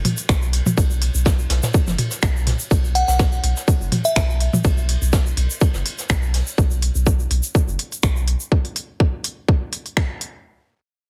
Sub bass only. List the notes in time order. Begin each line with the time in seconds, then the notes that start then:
0.29 B1
0.78 B1
1.15 B1
1.50 B1
1.87 F#1
2.23 B1
2.71 B1
3.08 B1
3.44 B1
3.81 F#1
4.16 B1
4.65 B1
5.02 B1
5.37 B1
5.74 F#1
6.10 B1
6.58 B1
6.95 B1
7.31 B1
7.68 F#1
8.03 B1